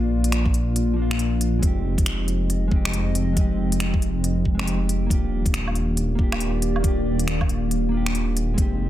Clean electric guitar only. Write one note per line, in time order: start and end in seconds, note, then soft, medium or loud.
0.00 0.92 F3 medium
0.00 0.95 A#3 medium
0.00 0.96 D4 medium
0.00 0.97 F4 medium
0.94 1.59 F3 medium
0.94 1.60 A#3 medium
0.99 1.62 D4 medium
0.99 1.63 F4 medium
1.59 2.67 G#3 medium
1.59 2.69 C4 medium
1.65 2.70 D#4 medium
1.65 2.72 G4 medium
2.68 3.32 G#3 medium
2.68 3.34 C4 medium
2.73 3.36 D#4 medium
2.73 3.37 G4 medium
3.33 4.42 G#3 medium
3.33 4.43 C4 medium
3.38 4.44 D#4 medium
3.38 4.46 G4 medium
4.55 5.06 G#3 medium
4.55 5.08 C4 medium
4.60 5.09 D#4 medium
4.60 5.11 G4 medium
5.07 6.14 A#3 medium
5.07 6.17 D4 medium
5.12 6.18 F4 medium
5.12 6.19 G4 medium
6.15 6.79 A#3 medium
6.15 6.81 D4 medium
6.21 6.83 F4 medium
6.21 6.84 G4 medium
6.80 7.88 A#3 medium
6.80 7.90 D4 medium
6.85 7.92 F4 medium
6.85 7.93 G4 medium
7.89 8.54 A#3 medium
7.89 8.56 D4 medium
7.94 8.57 F4 medium
7.94 8.58 G4 medium
8.54 8.90 G#3 medium
8.54 8.90 C4 medium
8.59 8.90 D#4 medium
8.59 8.90 G4 medium